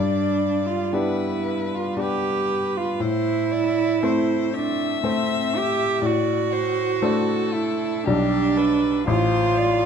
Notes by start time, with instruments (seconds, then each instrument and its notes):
Already playing: grand piano G2, cello D4, violin D5
0.66 cello F4
0.93 grand piano B3 D4 G4, cello E4, violin B4
1.75 cello F4
1.97 grand piano B3 D4 G4, cello G4, violin B4
2.77 cello F4
3.00 grand piano A2, cello E4, violin C5
3.52 violin D5
4.03 grand piano A3 C4 C5, violin C5
4.54 cello D4, violin E5
5.04 grand piano A3 C4 C5, cello C4
5.57 cello G4
6.02 grand piano A2, cello F#4, violin D5
6.53 violin C5
7.02 grand piano A3 D4 C5, violin A4
7.54 cello E4
8.04 grand piano B1 G3 D4 D5, cello D4, violin G4
8.57 violin B4
9.07 grand piano A1, cello F4, violin C5
9.57 violin D5